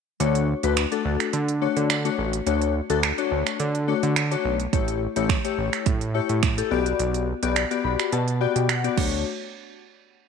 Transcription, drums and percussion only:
0.20 closed hi-hat
0.35 closed hi-hat
0.63 closed hi-hat
0.77 finger snap, closed hi-hat
0.92 closed hi-hat
1.20 finger snap, closed hi-hat
1.33 closed hi-hat
1.48 closed hi-hat
1.77 closed hi-hat
1.90 finger snap, closed hi-hat
2.05 closed hi-hat
2.33 closed hi-hat
2.47 closed hi-hat
2.62 closed hi-hat
2.90 closed hi-hat
3.03 finger snap, closed hi-hat
3.18 closed hi-hat
3.47 finger snap, closed hi-hat
3.60 closed hi-hat
3.75 closed hi-hat
4.03 closed hi-hat
4.16 finger snap, closed hi-hat
4.32 closed hi-hat
4.60 closed hi-hat
4.73 kick, closed hi-hat
4.88 closed hi-hat
5.16 closed hi-hat
5.29 finger snap, kick, closed hi-hat
5.45 closed hi-hat
5.73 finger snap, closed hi-hat
5.86 kick, closed hi-hat
6.01 closed hi-hat
6.29 closed hi-hat
6.43 finger snap, kick, closed hi-hat
6.58 closed hi-hat
6.86 closed hi-hat
6.99 closed hi-hat
7.14 closed hi-hat
7.43 closed hi-hat
7.56 finger snap, closed hi-hat
7.71 closed hi-hat
7.99 finger snap, closed hi-hat
8.12 closed hi-hat
8.28 closed hi-hat
8.56 closed hi-hat
8.69 finger snap, closed hi-hat
8.84 closed hi-hat
8.97 kick, crash

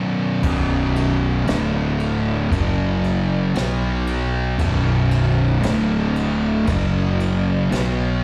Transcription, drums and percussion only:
0.43 kick, crash
0.96 ride
1.47 snare, ride
2.00 ride
2.52 kick, ride
3.04 ride
3.55 snare, ride
4.07 ride
4.59 kick, ride
5.11 ride
5.63 snare, ride
6.16 ride
6.67 kick, ride
7.20 ride
7.72 snare, ride

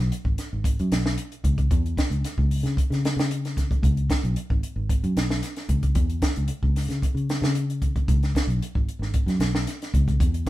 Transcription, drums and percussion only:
0.12 closed hi-hat
0.25 kick
0.38 snare, closed hi-hat
0.64 kick, closed hi-hat
0.79 closed hi-hat
0.92 snare, closed hi-hat
1.06 snare
1.18 closed hi-hat
1.32 closed hi-hat
1.44 kick, closed hi-hat
1.58 kick, closed hi-hat
1.71 kick, closed hi-hat
1.86 closed hi-hat
1.97 kick, snare, closed hi-hat
2.12 closed hi-hat
2.25 snare, closed hi-hat
2.38 kick
2.51 open hi-hat
2.65 snare, closed hi-hat
2.77 kick, closed hi-hat
2.92 snare, closed hi-hat
3.05 snare, closed hi-hat
3.19 snare, closed hi-hat
3.31 closed hi-hat
3.45 snare, closed hi-hat
3.57 kick, snare, closed hi-hat
3.71 kick, closed hi-hat
3.83 kick, closed hi-hat
3.97 closed hi-hat
4.10 kick, snare, closed hi-hat
4.24 closed hi-hat
4.36 closed hi-hat
4.50 kick
4.63 closed hi-hat
4.89 kick, closed hi-hat
5.04 closed hi-hat
5.17 snare, closed hi-hat
5.30 snare
5.43 snare, closed hi-hat
5.56 snare, closed hi-hat
5.69 kick, closed hi-hat
5.83 kick, closed hi-hat
5.95 kick, closed hi-hat
6.10 closed hi-hat
6.22 kick, snare, closed hi-hat
6.36 closed hi-hat
6.48 closed hi-hat
6.63 kick
6.76 snare, open hi-hat
6.90 snare, closed hi-hat
7.02 kick, closed hi-hat
7.17 closed hi-hat
7.29 snare, closed hi-hat
7.43 snare, closed hi-hat
7.55 closed hi-hat
7.70 closed hi-hat
7.82 kick, closed hi-hat
7.96 kick, closed hi-hat
8.08 kick, closed hi-hat
8.23 snare, closed hi-hat
8.35 kick, snare, closed hi-hat
8.50 closed hi-hat
8.62 closed hi-hat
8.75 kick
8.89 closed hi-hat
9.02 snare
9.14 kick, closed hi-hat
9.28 snare, closed hi-hat
9.40 snare, closed hi-hat
9.55 snare
9.67 snare, closed hi-hat
9.82 snare, closed hi-hat
9.94 kick, closed hi-hat
10.08 kick, closed hi-hat
10.20 kick, closed hi-hat
10.34 closed hi-hat

